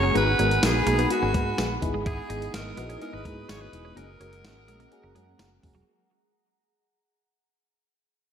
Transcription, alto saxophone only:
0.00 0.15 C#5 loud
0.17 0.66 B4 loud
0.65 1.11 G#4 loud
1.12 1.79 F#4 medium
2.07 2.51 G#4 loud
2.54 2.98 A#4 loud
3.02 3.16 A#4 loud
3.14 3.51 B4 loud
3.50 3.63 C#5 loud
3.61 3.97 B4 loud
3.98 5.36 A#4 loud

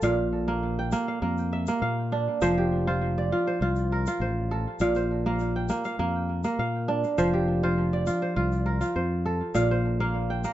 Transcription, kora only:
0.00 2.37 A#2 medium
0.00 0.79 F4 medium
0.00 0.61 C5 medium
0.00 1.03 F5 medium
0.48 0.92 A#3 medium
0.79 1.72 G5 medium
0.92 1.22 A#3 medium
1.08 1.59 F5 medium
1.22 1.68 A#3 medium
1.53 2.48 E5 medium
1.68 3.61 A#3 medium
1.82 2.82 F5 medium
2.12 3.80 D4 medium
2.42 4.76 F3 loud
2.42 2.87 C5 medium
2.58 3.99 G4 medium
2.87 3.32 F4 medium
2.87 3.47 C5 medium
3.18 4.29 D5 medium
3.32 3.62 F4 medium
3.47 4.21 C5 medium
3.62 4.07 F4 medium
3.92 4.57 A#4 medium
4.07 5.59 F4 medium
4.21 4.96 C5 medium
4.51 4.87 A4 medium
4.81 7.15 A#2 medium
4.81 5.26 F5 medium
4.96 6.15 C5 medium
5.26 5.69 A#3 medium
5.26 5.85 F5 medium
5.56 6.49 G5 medium
5.70 5.99 A#3 medium
5.85 6.59 F5 medium
5.99 6.44 A#3 medium
6.44 8.37 A#3 medium
6.59 7.59 F5 medium
6.88 8.56 D4 medium
7.18 9.52 F3 medium
7.18 7.63 C5 medium
7.33 8.75 G4 medium
7.63 8.07 F4 medium
7.63 8.22 C5 medium
7.93 9.04 D5 medium
8.07 8.36 F4 medium
8.22 8.95 C5 medium
8.36 8.80 F4 medium
8.66 9.32 A#4 medium
8.81 10.32 F4 medium
8.96 9.71 C5 medium
9.26 9.61 A4 medium
9.55 10.53 A#2 medium
9.55 10.00 F5 medium
9.71 10.53 C5 medium
10.00 10.44 A#3 medium
10.00 10.53 F5 medium
10.30 10.53 G5 medium
10.44 10.53 A#3 medium

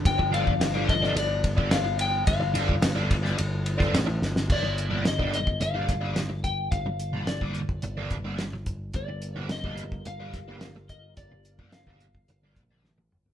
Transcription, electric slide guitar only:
0.06 0.34 G5 loud
0.34 0.85 F5 medium
0.90 1.18 D#5 medium
1.18 1.69 D5 medium
1.72 2.01 F5 medium
2.01 2.27 G5 medium
2.27 3.90 F5 medium
4.52 5.08 D5 medium
5.08 5.34 D#5 medium
5.35 5.62 D#5 medium
5.62 6.43 F5 medium
6.44 6.71 G5 medium
6.71 7.29 F5 medium
7.27 8.07 D5 medium
8.96 9.40 D5 medium
9.40 9.51 C5 medium
9.52 10.08 D#5 medium
10.07 10.92 F5 medium
10.90 11.17 D#5 medium
11.17 11.74 D5 medium
11.73 12.52 F5 medium

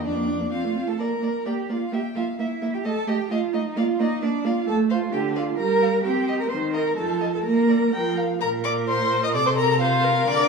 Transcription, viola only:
0.03 0.17 D4 soft
0.15 0.29 A#3 soft
0.27 0.41 D4 soft
0.40 0.51 A#3 soft
0.51 0.66 C4 soft
0.64 0.77 A3 soft
0.76 0.89 C4 soft
0.87 0.98 A3 soft
0.99 1.07 A#3 soft
1.22 1.30 A#3 soft
1.46 1.54 A#3 soft
1.69 1.77 A#3 soft
1.92 2.00 A#3 soft
2.16 2.24 A#3 soft
2.39 2.47 A#3 soft
2.62 2.70 A#3 soft
2.85 2.93 A3 soft
3.07 3.15 A3 medium
3.30 3.38 A3 soft
3.53 3.61 A3 medium
3.76 3.84 A#3 medium
3.99 4.07 A#3 medium
4.22 4.30 A#3 medium
4.44 4.52 A#3 medium
4.67 5.05 A3 medium
5.13 5.51 D3 medium
5.59 5.97 G3 medium
6.04 6.43 C4 medium
6.50 6.90 D#3 medium
6.97 7.37 F3 medium
7.45 7.86 A#3 medium
7.94 8.34 F3 medium
8.42 9.36 A#4 medium
9.35 9.82 A4 medium
9.81 10.06 C5 medium
10.04 10.48 A#4 medium

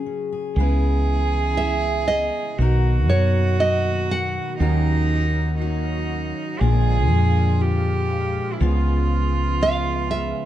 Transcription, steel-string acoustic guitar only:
0.00 0.57 C#3 soft
0.00 0.56 F#3 medium
0.00 0.31 G#4 soft
0.06 0.51 C#4 soft
0.33 0.60 G#4 soft
0.58 2.60 C#3 medium
0.58 2.60 B3 medium
0.58 1.59 E4 medium
0.58 2.55 B4 medium
1.60 2.54 E4 medium
2.60 4.54 B2 medium
2.60 4.55 D#4 medium
2.60 3.59 F#4 medium
2.60 4.55 A#4 medium
3.61 4.54 F#4 medium
4.60 6.54 D#3 medium
4.60 6.55 C#4 medium
4.60 5.60 F#4 medium
4.60 6.55 A#4 medium
5.62 6.55 F#4 medium
6.61 8.54 A#2 medium
6.61 8.55 D4 medium
6.61 7.59 F4 medium
7.61 8.54 F4 medium
8.60 10.45 C#3 medium
8.60 10.45 B3 medium
8.60 9.60 F4 medium
8.60 10.45 B4 medium
9.61 10.45 F4 medium

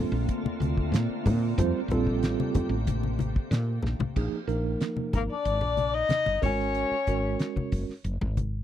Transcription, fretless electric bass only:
0.12 0.25 A#1 medium
0.43 muted fretless electric bass stroke soft
0.60 0.93 D2 medium
0.92 1.06 A#2 medium
1.09 muted fretless electric bass stroke soft
1.26 1.52 A#2 medium
1.58 1.71 F2 medium
1.72 muted fretless electric bass stroke soft
1.88 2.21 A#1 medium
2.21 2.35 A1 medium
2.55 muted fretless electric bass stroke soft
2.69 3.37 A1 medium
3.51 3.78 A#2 medium
3.83 3.97 A#1 medium
3.99 muted fretless electric bass stroke soft
4.16 4.30 A#1 medium
4.32 muted fretless electric bass stroke soft
4.47 4.75 A#1 medium
4.97 muted fretless electric bass stroke soft
5.13 5.27 G#1 medium
5.30 muted fretless electric bass stroke soft
5.45 5.59 G#1 medium
5.61 6.02 A#1 medium
6.10 muted fretless electric bass stroke soft
6.26 6.40 G1 medium
6.42 6.83 G#1 medium
6.91 muted fretless electric bass stroke soft
7.07 7.35 G#1 medium
7.56 muted fretless electric bass stroke soft
7.72 7.86 F#1 medium
7.89 muted fretless electric bass stroke soft
8.04 8.18 F#1 medium
8.21 8.62 G#1 medium

